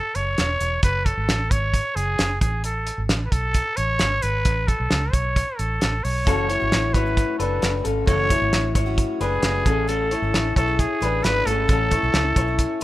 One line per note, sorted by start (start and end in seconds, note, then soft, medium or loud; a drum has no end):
0.00 0.17 A4 medium
0.15 0.35 F#1 medium
0.15 0.83 C#5 loud
0.15 closed hi-hat medium
0.38 0.58 E1 medium
0.38 snare medium
0.38 closed hi-hat medium
0.60 0.80 E1 medium
0.60 closed hi-hat medium
0.83 1.12 F#1 medium
0.83 1.07 B4 medium
0.83 kick loud
0.83 closed hi-hat medium
1.06 1.52 A4 medium
1.06 kick medium
1.06 closed hi-hat medium
1.17 1.27 G#1 medium
1.28 1.48 A1 medium
1.28 snare loud
1.28 closed hi-hat medium
1.51 1.80 G#1 medium
1.51 1.97 C#5 loud
1.51 kick medium
1.51 closed hi-hat medium
1.74 kick medium
1.74 closed hi-hat medium
1.96 2.16 F#1 medium
1.96 2.40 G#4 medium
1.96 closed hi-hat medium
2.19 2.38 F#1 medium
2.19 snare loud
2.19 closed hi-hat medium
2.41 2.90 A1 medium
2.41 2.62 G#4 medium
2.41 kick loud
2.41 closed hi-hat medium
2.64 3.03 A4 medium
2.64 closed hi-hat medium
2.87 closed hi-hat medium
2.98 3.08 G#1 medium
3.09 3.29 A1 medium
3.09 snare loud
3.09 closed hi-hat medium
3.25 3.34 B4 medium
3.32 3.61 B1 medium
3.32 3.78 A4 medium
3.32 kick medium
3.32 closed hi-hat medium
3.54 kick medium
3.54 closed hi-hat medium
3.77 3.97 A1 medium
3.77 4.24 C#5 loud
3.77 closed hi-hat medium
3.99 4.20 G#1 medium
3.99 snare loud
3.99 closed hi-hat medium
4.22 4.42 G#1 medium
4.22 4.69 B4 medium
4.22 closed hi-hat medium
4.45 4.74 A1 medium
4.45 kick loud
4.45 closed hi-hat medium
4.68 5.14 A4 medium
4.68 kick medium
4.68 closed hi-hat medium
4.80 4.89 B1 medium
4.91 5.11 C#2 medium
4.91 snare loud
4.91 closed hi-hat medium
5.13 5.42 B1 medium
5.13 5.59 C#5 medium
5.13 kick medium
5.13 closed hi-hat medium
5.36 kick medium
5.36 closed hi-hat medium
5.58 5.78 A1 medium
5.58 6.05 A4 medium
5.58 closed hi-hat medium
5.81 6.01 A1 medium
5.81 snare loud
5.81 closed hi-hat medium
6.04 6.24 B1 medium
6.04 6.95 C#5 loud
6.04 open hi-hat medium
6.25 6.56 F#1 medium
6.25 6.61 F#2 medium
6.25 6.61 E3 medium
6.25 6.61 F#3 medium
6.25 8.03 A3 medium
6.25 6.60 A3 medium
6.25 6.59 C#4 medium
6.25 6.50 C#4 medium
6.25 8.04 E4 medium
6.25 8.04 F#4 medium
6.25 6.59 F#4 medium
6.25 6.49 A4 medium
6.25 kick loud
6.25 closed hi-hat medium
6.49 6.92 E4 medium
6.49 6.92 C#5 medium
6.49 closed hi-hat medium
6.60 6.71 G#1 medium
6.60 7.07 F#3 soft
6.60 7.07 A3 soft
6.60 7.06 C#4 medium
6.60 7.05 F#4 medium
6.72 6.92 A1 medium
6.72 snare loud
6.72 closed hi-hat medium
6.93 7.23 G#1 medium
6.93 7.38 E4 medium
6.93 7.38 B4 medium
6.93 7.37 C#5 medium
6.93 kick medium
6.93 closed hi-hat medium
7.06 7.38 F#3 soft
7.06 7.39 A3 soft
7.06 7.40 C#4 soft
7.06 7.40 F#4 medium
7.17 kick medium
7.17 closed hi-hat medium
7.39 7.59 F#1 medium
7.39 7.61 F#3 medium
7.39 7.62 A3 medium
7.39 7.62 C#4 medium
7.39 7.82 D4 medium
7.39 7.63 F#4 medium
7.39 7.77 A4 medium
7.39 7.82 B4 medium
7.39 closed hi-hat medium
7.62 7.82 F#1 medium
7.62 7.84 F#3 medium
7.62 7.84 A3 medium
7.62 7.85 C#4 medium
7.62 7.86 F#4 medium
7.62 snare medium
7.62 closed hi-hat medium
7.84 8.04 G#1 medium
7.84 8.07 F#3 medium
7.84 8.07 A3 soft
7.84 8.07 C#4 medium
7.84 8.07 F#4 medium
7.84 8.06 A4 medium
7.84 closed hi-hat medium
8.06 8.36 F#1 loud
8.06 8.41 F#2 medium
8.06 8.41 E3 medium
8.06 8.42 F#3 medium
8.06 9.62 A3 medium
8.06 8.41 A3 medium
8.06 8.30 C#4 medium
8.06 8.40 C#4 medium
8.06 9.63 E4 medium
8.06 8.39 F#4 medium
8.06 9.63 F#4 medium
8.06 8.30 A4 loud
8.06 8.71 C#5 loud
8.06 kick loud
8.06 closed hi-hat medium
8.30 8.73 E4 medium
8.30 8.72 C#5 medium
8.30 kick medium
8.30 closed hi-hat medium
8.40 8.51 G#1 medium
8.40 8.87 F#3 soft
8.40 8.87 A3 soft
8.40 8.86 C#4 soft
8.40 8.85 F#4 soft
8.53 8.72 A1 medium
8.53 snare loud
8.53 closed hi-hat medium
8.75 9.04 G#1 medium
8.75 9.19 E4 medium
8.75 9.18 C#5 medium
8.75 kick medium
8.75 closed hi-hat medium
8.86 9.19 F#3 soft
8.86 9.20 A3 medium
8.86 9.20 C#4 medium
8.86 9.20 F#4 medium
8.98 kick medium
8.98 closed hi-hat medium
9.20 9.40 F#1 medium
9.20 9.41 F#3 medium
9.20 9.42 A3 medium
9.20 9.42 C#4 medium
9.20 9.64 D4 medium
9.20 9.43 F#4 medium
9.20 9.90 G#4 medium
9.20 9.63 B4 medium
9.20 closed hi-hat medium
9.42 9.62 F#1 medium
9.42 9.65 F#3 medium
9.42 9.64 A3 medium
9.42 9.65 C#4 medium
9.42 9.66 F#4 medium
9.42 snare loud
9.42 closed hi-hat medium
9.64 10.14 A1 medium
9.64 11.42 A3 medium
9.64 9.86 A3 medium
9.64 9.87 C#4 medium
9.64 11.43 C#4 medium
9.64 9.88 C#4 medium
9.64 9.88 E4 medium
9.64 9.89 G#4 medium
9.64 9.88 A4 medium
9.64 11.44 G#5 medium
9.64 kick loud
9.64 closed hi-hat medium
9.88 10.22 A3 medium
9.88 10.22 C#4 medium
9.88 10.12 C#4 medium
9.88 10.22 E4 medium
9.88 10.56 A4 medium
9.88 10.11 A4 medium
9.88 closed hi-hat medium
10.11 10.54 E4 medium
10.11 10.54 C#5 medium
10.11 closed hi-hat medium
10.22 10.32 G#1 medium
10.22 10.68 C#4 soft
10.22 10.68 E4 soft
10.34 10.53 A1 medium
10.34 snare loud
10.34 closed hi-hat medium
10.56 10.85 B1 medium
10.56 10.99 E4 medium
10.56 10.81 A4 loud
10.56 10.99 C#5 medium
10.56 kick medium
10.56 closed hi-hat medium
10.67 11.00 C#4 soft
10.67 11.01 E4 soft
10.67 11.01 G#4 medium
10.79 11.26 G#4 medium
10.79 kick medium
10.79 closed hi-hat medium
11.01 11.21 A1 medium
11.01 11.21 A3 medium
11.01 11.22 C#4 medium
11.01 11.45 D4 medium
11.01 11.23 E4 medium
11.01 11.23 G#4 medium
11.01 11.44 B4 medium
11.01 closed hi-hat medium
11.23 11.43 G#1 medium
11.23 11.44 A3 medium
11.23 11.45 C#4 medium
11.23 11.45 E4 medium
11.23 11.46 G#4 medium
11.23 11.48 B4 loud
11.23 snare medium
11.23 closed hi-hat medium
11.45 11.65 G#1 medium
11.45 12.84 A3 medium
11.45 11.67 A3 medium
11.45 11.68 C#4 soft
11.45 12.84 C#4 medium
11.45 11.69 C#4 medium
11.45 11.68 E4 medium
11.45 11.69 G#4 medium
11.45 12.84 A4 loud
11.45 11.69 A4 medium
11.45 12.84 G#5 medium
11.45 closed hi-hat medium
11.68 11.98 A1 loud
11.68 12.02 A3 medium
11.68 12.03 C#4 medium
11.68 11.92 C#4 medium
11.68 12.02 E4 medium
11.68 11.92 A4 medium
11.68 kick loud
11.68 closed hi-hat medium
11.91 12.35 E4 medium
11.91 12.34 C#5 medium
11.91 kick medium
11.91 closed hi-hat medium
12.03 12.12 B1 medium
12.03 12.48 C#4 soft
12.03 12.47 E4 medium
12.14 12.33 C#2 medium
12.14 snare loud
12.14 closed hi-hat medium
12.36 12.65 B1 medium
12.36 12.80 E4 medium
12.36 12.80 C#5 medium
12.36 kick medium
12.36 closed hi-hat medium
12.47 12.80 C#4 soft
12.47 12.81 E4 medium
12.59 kick medium
12.59 closed hi-hat medium
12.80 12.84 A3 medium